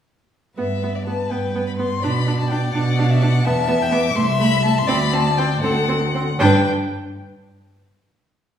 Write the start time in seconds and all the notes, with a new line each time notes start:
0.58 G2 B3 B4 E5
0.83 B3
0.95 D5
1.07 B3 A5
1.31 G2 B3 G5
1.55 B3
1.67 B5
1.77 B3 C6
2.03 B2 D4 D5 B5
2.27 D4
2.39 A5
2.50 D4 G5
2.74 B2 D4 F#5
2.98 D4
3.10 E5
3.21 D4 F#5
3.45 E2 B3 E5 A5
3.68 B3
3.82 G5
3.92 B3 D6
4.15 C2 A3 E5 C6
4.40 A3 B5
4.64 A3 A5
4.78 C6
4.87 D2 C4 D5 B5
5.13 C4 A5
5.38 C4 G5
5.62 D2 C4 A4 F#5
5.88 C4
6.15 C4
6.39 G2 D4 B4 G5